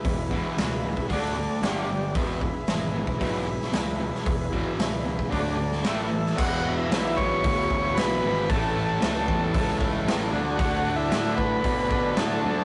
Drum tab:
CC |----------------|----------------|----------------|x---------------|
HH |o---o---o---o---|o---o---o---o---|o---o---o---o---|----o---o---o---|
SD |----o-------o---|----o------oo--o|----o------oo--o|----o-------o---|
BD |o-o----oo-------|o-o----oo-------|o-o----oo-------|o-----o-o-o-----|

CC |----------------|----------------|
HH |o---o---o---o---|o---o---o---o---|
SD |----o-------o---|----o-------o---|
BD |o-----o-o-o-----|o-----o-o-o-----|